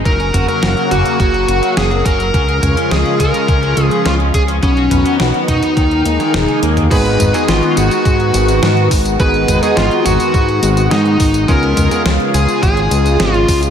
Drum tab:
CC |----------------|----------------|----------------|x---------------|
HH |xxxxxxxxxxxxxxxx|xxxxxxxxxxxxxxxx|xxxxxxxxxxxxxxxx|xxxxxxxxxxxxxxox|
TB |----------------|----------------|----------------|x-xxx-xxx-xxx-xx|
SD |----o-------o---|----o-------o---|----o------oo---|----o-------o---|
T1 |----------------|----------------|------------oo--|----------------|
T2 |--o---o---------|--o-------------|--o---o--------o|--o-------------|
BD |o-------o-----o-|o-----o-o-----o-|o-----o-o-------|o-------o-----o-|

CC |----------------|----------------|
HH |xxxxxxxxxxxxxxox|xxxxxxxxxxxxxxox|
TB |x-xxx-xxx-xxx-xx|x-xxx-xxx-xxx-xx|
SD |----o-o-----o---|----o-------o---|
T1 |----------------|----------------|
T2 |--o---o---------|--o-------------|
BD |o-------o-----o-|o-------o-----o-|